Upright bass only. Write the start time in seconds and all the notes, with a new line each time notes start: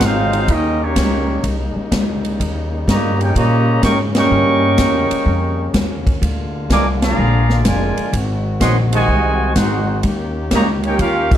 0.00 G#1
0.48 D#2
0.96 C#2
1.43 C2
1.76 muted upright bass stroke
1.92 C#2
2.40 D#2
2.87 G2
3.35 A#2
3.83 G#2
4.31 G2
4.78 E2
5.11 muted upright bass stroke
5.26 F2
5.74 D#2
6.22 D2
6.70 C2
7.18 A#1
7.65 F1
7.98 muted upright bass stroke
8.13 G#1
8.60 A#1
9.08 C2
9.55 G#1
10.03 D#2
10.51 C#2
10.99 D#2